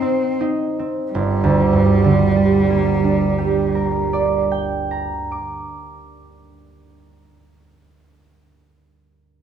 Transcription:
Already playing: D#3 G3 C4 D#4
0.02 C4
0.41 D#4
0.79 C4
1.12 G1 G3
1.44 D2
1.73 G2
2.04 D3
2.36 G3
2.70 A#3
3.04 D4
3.38 G4
3.75 A#4
4.13 D5
4.51 G5
4.91 A#5
5.32 D6

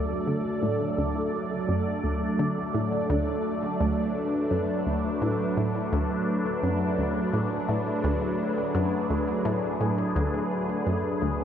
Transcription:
Already playing: D2 F#3 A3 D4 A4 D5
0.27 D3
0.63 A2
0.98 D2
1.69 F#2
2.04 D2
2.39 D3
2.74 A2
3.10 D2
3.80 D2 B4
4.51 F#2
4.87 D2
5.22 A2
5.57 A2
5.93 D2
6.43 G#4
6.63 F#2
6.98 D2
7.33 A2
7.69 A2
8.04 D2
8.75 F#2
9.10 D2
9.45 A2
9.81 A2
10.16 D2
10.86 F#2
11.22 D2

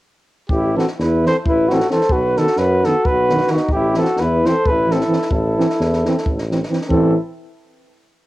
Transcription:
0.49 A1 G4, kick
0.54 E4
0.76 E3 C4 F#4 A4, snare
0.87 snare
0.99 E2 E4 B4, snare
1.25 E3 C4 A4 C5, snare
1.45 A1 E4 B4, kick
1.68 E3 C4 F#4, snare
1.73 A4
1.80 snare
1.89 E3 C4 A4 C5, snare
2.01 snare
2.09 B1 F#4 B4, kick
2.37 D#3 B3 F#4 A4, snare
2.47 snare
2.56 F#2 F#4 B4, snare
2.84 D#3 B3 A4, snare
2.89 F#4
3.05 B1 B4, kick
3.09 F#4
3.29 D#3 B3, snare
3.37 snare
3.47 D#3 F#4, snare
3.52 B3 D#4
3.57 snare
3.69 A1 G4, kick
3.75 E4
3.94 E3 C4 A4, snare
4.02 F#4, snare
4.16 E2 B4, snare
4.23 E4
4.44 E3 C4 C5, snare
4.50 A4
4.65 A1 B4, kick
4.71 E4
4.88 E3 A4, snare
4.92 C4 E4
5.00 snare
5.08 E3 C4
5.12 snare
5.21 snare
5.31 A1 E4 A4, kick
5.57 E3 C4, snare
5.70 snare
5.80 E2, snare
5.93 snare
6.05 E3 C4, snare
6.18 snare
6.26 A1, kick
6.38 snare
6.51 E3 C4, snare
6.63 snare
6.70 E3 C4, snare
6.81 snare
6.88 A1 E3 C4 A4, kick
6.95 E4

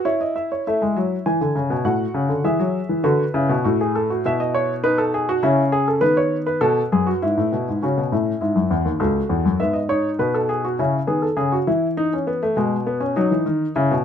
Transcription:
0.05 E4 C#5
0.21 D#5
0.36 E5
0.52 C#5
0.67 A3 E4 E5
0.82 G#3
0.96 F#3
1.26 E3 G#5
1.41 D3
1.55 C#3
1.70 B2
1.85 A2 F#4 F#5
2.14 C#3
2.29 D3
2.44 E3 G#4 E5
2.59 F#3
2.89 E3
3.04 D3 F#4 B4
3.34 C#3 E4
3.49 B2
3.64 A2 F#4
3.81 G#4
3.95 A4
4.10 F#4
4.25 B2 E4 E5
4.40 D#5
4.54 C#5
4.84 D#4 B4
4.98 A4
5.14 G#4
5.29 F#4
5.43 C#3 C#4 E4
5.72 G#4
5.88 A4
6.01 D#3 B3 B4
6.17 C#5
6.46 B4
6.61 B2 A4
6.92 F#2 G#4
7.07 F#4
7.22 G#2 E4
7.37 A2
7.53 B2
7.68 G#2
7.83 C#3 C#4 F#4
7.98 B2
8.12 A2 E4
8.41 G#2 E4
8.56 F#2
8.71 E2
8.85 D#2
9.00 C#2 F#4 A4
9.29 E2
9.45 F#2
9.60 G#2 B3 E5
9.73 D#5
9.89 D#4 C#5
10.19 B2 B4
10.34 A4
10.49 G#4
10.65 F#4
10.79 C#3 C#4 E4
11.07 D#3 B3 G#4
11.22 A4
11.37 C#3 G#4
11.52 F#4
11.67 E3 E4
11.97 D#4
12.13 C#4
12.27 B3
12.43 A3
12.57 B2 G#3
12.87 B3
13.00 C#4
13.16 F#3 D#4
13.31 E3
13.46 D#3
13.76 C#3 E4
13.91 B2

